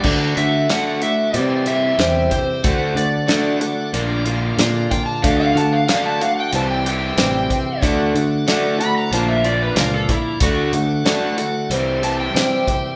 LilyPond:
<<
  \new Staff \with { instrumentName = "Electric slide guitar" } { \time 4/4 \key d \mixolydian \tempo 4 = 93 r8 e''8 fis''8 e''8 d''8 e''4 c''8~ | c''8 d''2 r4 g''16 a''16 | f''16 f''16 a''16 f''16 f''16 a''16 f''16 g''16 a''16 g''16 g''4. | r4. b''16 bes''16 a''16 e''16 d''16 b'16 bes'16 a'16 e'8 |
fis'8 r2 a''16 g''4~ g''16 | }
  \new Staff \with { instrumentName = "Tonewheel organ" } { \time 4/4 \key d \mixolydian <d' a' fis''>2 <c' g' e''>2 | <d' a' fis''>2 <bes f' d''>2 | <d' a' fis''>2 <c' g' e''>2 | <d' a' fis''>2 <f bes d''>2 |
<d' a' fis''>2 <c' g' e''>2 | }
  \new Staff \with { instrumentName = "Steel-string acoustic guitar" } { \time 4/4 \key d \mixolydian <d a d' fis'>8 <a d' fis'>8 <d a d' fis'>8 <a d' fis'>8 <e g c' g'>8 <g c' g'>8 <c e g c' g'>8 <g c' g'>8 | <d a d' fis'>8 <a d' fis'>8 <d a d' fis'>8 <a d' fis'>8 <d bes d' f'>8 <bes d' f'>8 <bes, d bes d' f'>8 <bes d' f'>8 | <d a d' fis'>8 <a d' fis'>8 <d a d' fis'>8 <a d' fis'>8 <e g c' g'>8 <g c' g'>8 <c e g c' g'>8 <g c' g'>8 | <d a d' fis'>8 <a d' fis'>8 <d a d' fis'>8 <a d' fis'>8 <f bes d' f'>8 <bes d' f'>8 <bes, f bes d' f'>8 <bes d'>8 |
<d a d' fis'>8 <a d' fis'>8 <d a d' fis'>8 <a d' fis'>8 <e g c' g'>8 <g c' g'>8 <c e g c' g'>8 <g c' g'>8 | }
  \new Staff \with { instrumentName = "Overdriven electric guitar" } { \clef bass \time 4/4 \key d \mixolydian <d a d'>8 <d a>8 <d a d'>8 <d a>8 <c e g>8 <c e g>8 <c e>8 <c e>8 | <d a d'>8 <d a>8 <d a d'>8 <d a>8 <bes, d bes>8 <bes, d bes>8 <bes, d>8 <bes, d>8 | <d a d'>8 <d a>8 <d a d'>8 <d a>8 <c e g>8 <c e g>8 <c e>8 <c e>8 | <d a d'>8 <d a>8 <d a d'>8 <d a>8 <bes, d bes>8 <bes, d bes>8 <bes, d>8 <bes, d>8 |
<d a d'>8 <d a>8 <d a d'>8 <d a>8 <c e g>8 <c e g>8 <c e>8 <c e>8 | }
  \new Staff \with { instrumentName = "Fingered electric bass" } { \clef bass \time 4/4 \key d \mixolydian d8 d8 r4 c4 e,8 r8 | d,8 d8 r4 bes,,4 bes,8 r8 | d,8 d8 r4 c,4 a,,8 r8 | d,8 d8 r4 bes,,4 cis,8 r8 |
d,8 d8 r4 c,4 c8 r8 | }
  \new DrumStaff \with { instrumentName = "Drums" } \drummode { \time 4/4 <cymc bd>8 hh8 <hh sn>8 hh8 hh8 hh8 <hh sn>8 <hh bd>8 | <hh bd>8 hh8 <hh sn>8 hh8 hh8 hh8 <hh sn>8 <hh bd>8 | <hh bd>8 hh8 <hh sn>8 hh8 hh8 hh8 <hh sn>8 <hh bd>8 | <hh bd>8 hh8 <hh sn>8 hh8 hh8 hh8 <hh sn>8 <hh bd>8 |
<hh bd>8 hh8 <hh sn>8 hh8 hh8 hh8 <hh sn>8 <hh bd>8 | }
>>